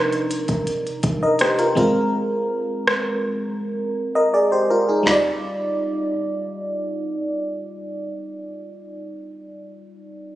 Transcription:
Already playing: fm electric piano C3 F3 D4 D#4 A#4
0.12 closed hi-hat
0.31 closed hi-hat
0.48 kick, closed hi-hat
0.67 closed hi-hat
0.87 closed hi-hat
1.03 kick, closed hi-hat
1.23 fm electric piano A#4 D#5
1.39 fm electric piano G4 C5, cross-stick, closed hi-hat
1.59 fm electric piano F4 A#4, closed hi-hat
1.75 fm electric piano G#3 C4 F4 A#4, kick, closed hi-hat
2.87 cross-stick
4.15 fm electric piano A#4 D#5
4.34 fm electric piano G#4 D5
4.52 fm electric piano G4 C5
4.70 fm electric piano F4 A#4
4.89 fm electric piano D#4 G#4
5.03 fm electric piano G3 D#4, snare, floor tom
5.08 fm electric piano F4 D5

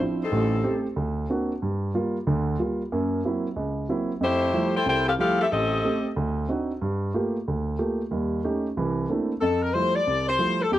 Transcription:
0.00 grand piano F3 C4 D4 E4
0.23 saxophone section G3 C4 D#4 A4
0.32 grand piano A1 A2
0.64 grand piano A3 C4 G4
0.96 grand piano D2
1.30 grand piano A#3 C4 D4 F#4
1.62 grand piano G2
1.94 grand piano G3 A#3 F4
2.27 grand piano D2 D3
2.59 grand piano G3 A#3 F4
2.92 grand piano F#2 A#3
3.25 grand piano F#3 A#3 C4 E4
3.56 grand piano C#2
3.89 grand piano F#3 A#3 C4 E4
4.21 grand piano F2, saxophone section A3 E4 G4 C5
4.54 grand piano F3 G3 A3 E4
4.76 saxophone section E4 A4 C5 G5
4.86 grand piano C2, saxophone section E4 A4 C5 G5
5.08 saxophone section C4 G4 A4 F5
5.19 grand piano F3 G3 A3 E4, saxophone section C4 G4 A4 F5
5.41 saxophone section C4 G4 A4 E5
5.51 grand piano A1, saxophone section C4 G4 A4 D#5
5.84 grand piano A3 C4 G4
6.16 grand piano D2
6.49 grand piano C4 D4 D#4 F#4
6.81 grand piano G2
7.14 grand piano A3 A#3 F4 G4
7.48 grand piano D2
7.79 grand piano A3 A#3 F4 G4
8.11 grand piano D#2 G3
8.44 grand piano A3 C#4 D#4 G4
8.77 grand piano C2 E3
9.10 grand piano A3 A#3 C4 D4 E4
9.41 grand piano F2, saxophone section A4
9.63 saxophone section A#4
9.74 grand piano F3 G3 A3 E4, saxophone section C5
9.95 saxophone section D5
10.07 grand piano C2
10.29 saxophone section C5
10.39 grand piano F3 G3 A3 E4
10.62 saxophone section A4
10.72 grand piano E2, saxophone section G4

